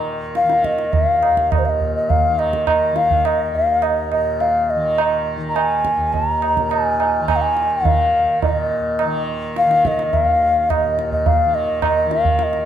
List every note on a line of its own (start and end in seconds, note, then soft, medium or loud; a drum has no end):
0.00 1.04 D#2 soft
0.00 1.67 A#2 medium
0.00 0.43 D#3 medium
0.35 0.66 F5 medium
0.35 tabla te medium
0.43 2.28 D#3 medium
0.50 tabla te medium
0.64 0.95 D#5 medium
0.64 tabla ke medium
0.78 tabla te medium
0.93 1.53 F5 medium
0.93 tabla tin medium
0.93 tabla ge medium
1.05 3.52 D#2 medium
1.23 tabla na medium
1.37 tabla ke medium
1.51 1.60 D#5 medium
1.51 tabla na medium
1.51 tabla ge medium
1.59 1.67 C5 medium
1.65 4.12 A#2 soft
1.65 1.71 F5 medium
1.70 1.95 D#5 medium
1.81 tabla ge soft
1.95 2.11 D#5 medium
2.10 2.41 F5 medium
2.10 tabla tin medium
2.10 tabla ge medium
2.28 2.91 D#3 medium
2.39 2.68 D#5 medium
2.39 tabla na medium
2.53 tabla ke medium
2.67 2.98 D#5 medium
2.67 tabla na medium
2.67 tabla ge medium
2.91 4.75 D#3 medium
2.96 3.28 F5 medium
2.96 tabla te medium
3.11 tabla ge soft
3.25 3.57 D#5 medium
3.25 tabla na medium
3.52 5.96 D#2 medium
3.52 3.85 F5 medium
3.82 4.12 D#5 medium
3.82 tabla na medium
4.12 6.58 A#2 medium
4.12 4.42 D#5 medium
4.12 tabla na medium
4.40 4.72 F5 medium
4.40 tabla tin medium
4.70 5.28 D#5 medium
4.75 5.36 D#3 medium
4.98 tabla na medium
5.36 7.20 D#3 medium
5.49 5.57 A#5 medium
5.56 6.14 G#5 medium
5.56 tabla na medium
5.85 tabla ke medium
5.96 10.24 D#2 medium
6.13 6.72 A#5 medium
6.13 tabla tin medium
6.13 tabla ge medium
6.42 tabla na medium
6.57 8.43 A#2 medium
6.57 tabla ke soft
6.70 7.28 G#5 medium
6.70 tabla na medium
7.00 tabla na medium
7.20 7.81 D#3 medium
7.28 7.37 G#5 medium
7.28 tabla na medium
7.28 tabla ge medium
7.36 7.44 F5 medium
7.42 7.87 G#5 medium
7.57 tabla te medium
7.81 9.03 D#3 medium
7.85 8.42 F5 medium
7.85 tabla tin medium
7.85 tabla ge medium
8.42 10.84 A#2 medium
8.42 9.24 D#5 medium
8.42 tabla tin medium
8.42 tabla ge medium
8.99 tabla na medium
9.03 9.65 D#3 medium
9.56 9.89 F5 loud
9.56 tabla te medium
9.65 11.45 D#3 medium
9.71 tabla te medium
9.85 10.15 D#5 medium
9.85 tabla ke medium
9.99 tabla te medium
10.13 10.72 F5 medium
10.13 tabla tin medium
10.13 tabla ge medium
10.24 12.64 D#2 medium
10.70 11.12 D#5 medium
10.70 tabla na medium
10.70 tabla ge medium
10.85 12.65 A#2 medium
10.99 tabla te medium
11.12 11.28 D#5 medium
11.12 tabla ge soft
11.26 11.56 F5 medium
11.26 tabla tin medium
11.26 tabla ge medium
11.45 12.05 D#3 medium
11.55 11.82 D#5 medium
11.82 12.13 D#5 medium
11.82 tabla na medium
11.82 tabla ge medium
12.05 12.65 D#3 medium
12.11 12.39 F5 medium
12.11 tabla te medium
12.25 tabla ge medium
12.39 12.45 F5 medium
12.39 tabla te medium
12.43 12.65 D#5 medium
12.53 tabla te medium